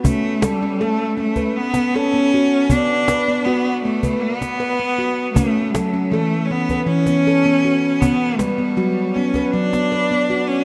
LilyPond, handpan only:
<<
  \new Staff \with { instrumentName = "Handpan" } { \time 7/8 \key b \minor \tempo 4 = 79 cis'8 a'16 cis'16 a'8 cis'16 b'8 b16 a'16 b16 fis'8 | b8 b'16 b16 fis'8 b16 b'8 b16 b'16 b16 fis'8 | cis'8 a'16 cis'16 a'8 cis'16 b'8 b16 a'16 b16 fis'8 | r8 b'16 b16 fis'8 b16 b'8 b16 b'16 b16 fis'8 | }
  \new Staff \with { instrumentName = "Handpan" } { \clef bass \time 7/8 \key b \minor r2. r8 | r2. r8 | a4 e4 e4. | b4 fis4 fis4. | }
>>